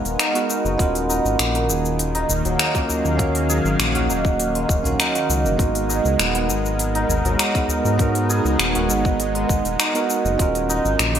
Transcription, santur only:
0, 0, Header, 1, 2, 480
1, 0, Start_track
1, 0, Tempo, 600000
1, 635, Time_signature, 4, 2, 24, 8
1, 8957, End_track
2, 0, Start_track
2, 0, Title_t, "Santur"
2, 0, Program_c, 0, 15
2, 0, Note_on_c, 0, 54, 74
2, 0, Note_on_c, 0, 56, 77
2, 0, Note_on_c, 0, 59, 98
2, 0, Note_on_c, 0, 63, 73
2, 0, Note_on_c, 0, 66, 77
2, 0, Note_on_c, 0, 68, 107
2, 153, Note_off_c, 0, 63, 0
2, 156, Note_on_c, 0, 63, 98
2, 278, Note_off_c, 0, 66, 0
2, 282, Note_on_c, 0, 66, 72
2, 395, Note_off_c, 0, 63, 0
2, 398, Note_on_c, 0, 63, 81
2, 520, Note_off_c, 0, 59, 0
2, 523, Note_on_c, 0, 59, 72
2, 626, Note_off_c, 0, 56, 0
2, 636, Note_on_c, 0, 56, 87
2, 675, Note_off_c, 0, 54, 0
2, 872, Note_off_c, 0, 63, 0
2, 875, Note_on_c, 0, 63, 94
2, 1241, Note_on_c, 0, 58, 72
2, 1289, Note_off_c, 0, 59, 0
2, 1354, Note_off_c, 0, 68, 0
2, 1357, Note_on_c, 0, 68, 77
2, 1715, Note_off_c, 0, 63, 0
2, 1719, Note_on_c, 0, 63, 106
2, 1960, Note_on_c, 0, 54, 78
2, 2071, Note_off_c, 0, 63, 0
2, 2074, Note_on_c, 0, 63, 96
2, 2194, Note_off_c, 0, 58, 0
2, 2197, Note_on_c, 0, 58, 97
2, 2309, Note_off_c, 0, 63, 0
2, 2312, Note_on_c, 0, 63, 79
2, 2429, Note_off_c, 0, 54, 0
2, 2439, Note_on_c, 0, 54, 71
2, 2791, Note_off_c, 0, 68, 0
2, 2795, Note_on_c, 0, 68, 105
2, 2881, Note_off_c, 0, 66, 0
2, 3160, Note_on_c, 0, 66, 77
2, 3272, Note_off_c, 0, 63, 0
2, 3275, Note_on_c, 0, 63, 76
2, 3631, Note_off_c, 0, 56, 0
2, 3641, Note_on_c, 0, 56, 82
2, 3991, Note_off_c, 0, 63, 0
2, 3994, Note_on_c, 0, 63, 99
2, 4116, Note_off_c, 0, 66, 0
2, 4119, Note_on_c, 0, 66, 68
2, 4232, Note_off_c, 0, 63, 0
2, 4235, Note_on_c, 0, 63, 77
2, 4355, Note_off_c, 0, 58, 0
2, 4358, Note_on_c, 0, 58, 69
2, 4465, Note_off_c, 0, 56, 0
2, 4474, Note_on_c, 0, 56, 80
2, 4515, Note_off_c, 0, 54, 0
2, 4712, Note_off_c, 0, 63, 0
2, 4715, Note_on_c, 0, 63, 97
2, 4954, Note_on_c, 0, 59, 81
2, 5002, Note_off_c, 0, 58, 0
2, 5078, Note_off_c, 0, 59, 0
2, 5081, Note_on_c, 0, 59, 75
2, 5193, Note_off_c, 0, 68, 0
2, 5196, Note_on_c, 0, 68, 77
2, 5559, Note_off_c, 0, 63, 0
2, 5563, Note_on_c, 0, 63, 109
2, 5802, Note_on_c, 0, 54, 77
2, 5911, Note_off_c, 0, 63, 0
2, 5915, Note_on_c, 0, 63, 93
2, 6037, Note_off_c, 0, 59, 0
2, 6040, Note_on_c, 0, 59, 92
2, 6153, Note_off_c, 0, 63, 0
2, 6157, Note_on_c, 0, 63, 80
2, 6274, Note_off_c, 0, 54, 0
2, 6283, Note_on_c, 0, 54, 67
2, 6633, Note_off_c, 0, 68, 0
2, 6637, Note_on_c, 0, 68, 105
2, 6718, Note_off_c, 0, 66, 0
2, 7000, Note_on_c, 0, 66, 76
2, 7113, Note_off_c, 0, 63, 0
2, 7117, Note_on_c, 0, 63, 75
2, 7471, Note_off_c, 0, 56, 0
2, 7480, Note_on_c, 0, 56, 79
2, 7832, Note_off_c, 0, 63, 0
2, 7835, Note_on_c, 0, 63, 99
2, 7958, Note_off_c, 0, 66, 0
2, 7961, Note_on_c, 0, 66, 72
2, 8073, Note_off_c, 0, 63, 0
2, 8076, Note_on_c, 0, 63, 74
2, 8308, Note_off_c, 0, 56, 0
2, 8317, Note_on_c, 0, 56, 89
2, 8355, Note_off_c, 0, 54, 0
2, 8554, Note_off_c, 0, 63, 0
2, 8557, Note_on_c, 0, 63, 108
2, 8796, Note_on_c, 0, 58, 79
2, 8844, Note_off_c, 0, 59, 0
2, 8918, Note_off_c, 0, 58, 0
2, 8922, Note_on_c, 0, 58, 78
2, 8957, Note_off_c, 0, 56, 0
2, 8957, Note_off_c, 0, 58, 0
2, 8957, Note_off_c, 0, 63, 0
2, 8957, Note_off_c, 0, 66, 0
2, 8957, Note_off_c, 0, 68, 0
2, 8957, End_track
0, 0, End_of_file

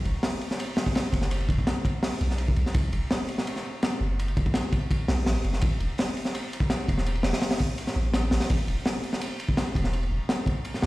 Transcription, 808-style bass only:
0, 0, Header, 1, 2, 480
1, 0, Start_track
1, 0, Tempo, 359281
1, 1754, Time_signature, 4, 2, 24, 8
1, 14513, End_track
2, 0, Start_track
2, 0, Title_t, "808-style bass"
2, 0, Program_c, 0, 38
2, 71, Note_on_c, 0, 30, 93
2, 184, Note_off_c, 0, 30, 0
2, 1506, Note_on_c, 0, 30, 94
2, 1971, Note_off_c, 0, 30, 0
2, 1986, Note_on_c, 0, 30, 87
2, 2101, Note_off_c, 0, 30, 0
2, 2953, Note_on_c, 0, 35, 92
2, 3415, Note_off_c, 0, 35, 0
2, 3432, Note_on_c, 0, 35, 99
2, 3544, Note_off_c, 0, 35, 0
2, 3671, Note_on_c, 0, 35, 109
2, 3889, Note_off_c, 0, 35, 0
2, 3912, Note_on_c, 0, 30, 87
2, 4025, Note_off_c, 0, 30, 0
2, 5352, Note_on_c, 0, 30, 95
2, 5814, Note_off_c, 0, 30, 0
2, 5837, Note_on_c, 0, 30, 90
2, 5947, Note_off_c, 0, 30, 0
2, 6794, Note_on_c, 0, 35, 94
2, 7034, Note_on_c, 0, 33, 97
2, 7054, Note_off_c, 0, 35, 0
2, 7250, Note_off_c, 0, 33, 0
2, 7276, Note_on_c, 0, 30, 81
2, 7492, Note_off_c, 0, 30, 0
2, 7514, Note_on_c, 0, 33, 104
2, 7731, Note_off_c, 0, 33, 0
2, 7755, Note_on_c, 0, 28, 86
2, 7866, Note_off_c, 0, 28, 0
2, 9197, Note_on_c, 0, 28, 98
2, 9657, Note_off_c, 0, 28, 0
2, 9674, Note_on_c, 0, 28, 89
2, 9785, Note_off_c, 0, 28, 0
2, 10634, Note_on_c, 0, 33, 93
2, 11095, Note_off_c, 0, 33, 0
2, 11113, Note_on_c, 0, 33, 103
2, 11225, Note_off_c, 0, 33, 0
2, 11359, Note_on_c, 0, 33, 105
2, 11573, Note_off_c, 0, 33, 0
2, 11593, Note_on_c, 0, 28, 92
2, 11705, Note_off_c, 0, 28, 0
2, 13029, Note_on_c, 0, 28, 95
2, 13493, Note_off_c, 0, 28, 0
2, 13513, Note_on_c, 0, 28, 94
2, 13625, Note_off_c, 0, 28, 0
2, 14471, Note_on_c, 0, 36, 93
2, 14513, Note_off_c, 0, 36, 0
2, 14513, End_track
0, 0, End_of_file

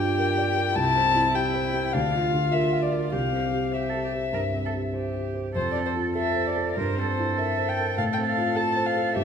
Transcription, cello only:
0, 0, Header, 1, 2, 480
1, 0, Start_track
1, 0, Key_signature, -1, "major"
1, 0, Tempo, 589971
1, 617, Time_signature, 4, 2, 24, 8
1, 2059, Tempo, 602410
1, 7405, End_track
2, 0, Start_track
2, 0, Title_t, "Cello"
2, 0, Program_c, 0, 42
2, 0, Note_on_c, 0, 67, 63
2, 608, Note_off_c, 0, 67, 0
2, 613, Note_on_c, 0, 64, 69
2, 1572, Note_on_c, 0, 62, 57
2, 1584, Note_off_c, 0, 64, 0
2, 1804, Note_off_c, 0, 62, 0
2, 1809, Note_on_c, 0, 65, 61
2, 2533, Note_on_c, 0, 67, 50
2, 2545, Note_off_c, 0, 65, 0
2, 2971, Note_off_c, 0, 67, 0
2, 3023, Note_on_c, 0, 67, 47
2, 3143, Note_on_c, 0, 69, 43
2, 3155, Note_off_c, 0, 67, 0
2, 3258, Note_off_c, 0, 69, 0
2, 3263, Note_on_c, 0, 67, 46
2, 3327, Note_off_c, 0, 67, 0
2, 3494, Note_on_c, 0, 70, 51
2, 3558, Note_off_c, 0, 70, 0
2, 3749, Note_on_c, 0, 69, 38
2, 3813, Note_off_c, 0, 69, 0
2, 3986, Note_on_c, 0, 67, 38
2, 4461, Note_off_c, 0, 67, 0
2, 4473, Note_on_c, 0, 69, 55
2, 4923, Note_off_c, 0, 69, 0
2, 4957, Note_on_c, 0, 69, 51
2, 5425, Note_off_c, 0, 69, 0
2, 5431, Note_on_c, 0, 70, 57
2, 5669, Note_off_c, 0, 70, 0
2, 5674, Note_on_c, 0, 69, 57
2, 7337, Note_on_c, 0, 67, 57
2, 7349, Note_off_c, 0, 69, 0
2, 7405, Note_off_c, 0, 67, 0
2, 7405, End_track
0, 0, End_of_file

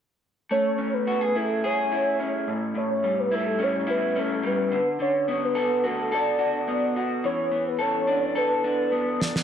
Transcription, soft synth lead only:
0, 0, Header, 1, 2, 480
1, 0, Start_track
1, 0, Key_signature, 3, "major"
1, 0, Tempo, 561062
1, 435, Time_signature, 4, 2, 24, 8
1, 8069, End_track
2, 0, Start_track
2, 0, Title_t, "Soft synth lead"
2, 0, Program_c, 0, 80
2, 442, Note_on_c, 0, 73, 105
2, 801, Note_on_c, 0, 71, 97
2, 814, Note_off_c, 0, 73, 0
2, 1163, Note_on_c, 0, 69, 87
2, 1176, Note_off_c, 0, 71, 0
2, 1411, Note_on_c, 0, 73, 89
2, 1424, Note_off_c, 0, 69, 0
2, 2123, Note_off_c, 0, 73, 0
2, 2372, Note_on_c, 0, 73, 89
2, 2733, Note_on_c, 0, 71, 80
2, 2746, Note_off_c, 0, 73, 0
2, 2860, Note_on_c, 0, 69, 83
2, 2873, Note_off_c, 0, 71, 0
2, 3102, Note_on_c, 0, 73, 86
2, 3115, Note_off_c, 0, 69, 0
2, 3328, Note_off_c, 0, 73, 0
2, 3336, Note_on_c, 0, 71, 82
2, 3585, Note_on_c, 0, 69, 88
2, 3598, Note_off_c, 0, 71, 0
2, 3818, Note_on_c, 0, 71, 89
2, 3831, Note_off_c, 0, 69, 0
2, 4166, Note_off_c, 0, 71, 0
2, 4292, Note_on_c, 0, 73, 96
2, 4654, Note_on_c, 0, 71, 99
2, 4667, Note_off_c, 0, 73, 0
2, 5009, Note_on_c, 0, 69, 89
2, 5022, Note_off_c, 0, 71, 0
2, 5242, Note_off_c, 0, 69, 0
2, 5255, Note_on_c, 0, 74, 95
2, 5931, Note_off_c, 0, 74, 0
2, 6204, Note_on_c, 0, 73, 106
2, 6535, Note_off_c, 0, 73, 0
2, 6569, Note_on_c, 0, 71, 89
2, 6681, Note_on_c, 0, 73, 100
2, 6693, Note_off_c, 0, 71, 0
2, 7158, Note_on_c, 0, 71, 86
2, 7171, Note_off_c, 0, 73, 0
2, 7877, Note_off_c, 0, 71, 0
2, 8069, End_track
0, 0, End_of_file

